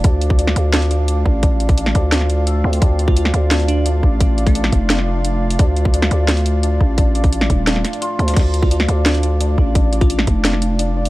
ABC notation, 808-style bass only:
X:1
M:4/4
L:1/8
Q:1/4=173
K:Dm
V:1 name="808-style bass" clef=bass
D,,3 D,,4 A,,,- | A,,,3 D,,4 D,, | D,,3 D,,4 A,,,- | A,,,3 F,,,4- F,,, |
D,,3 D,,4 A,,,- | A,,,3 _E,,,2 z2 D,, | D,,3 D,,4 A,,,- | A,,,3 F,,,4- F,,, |]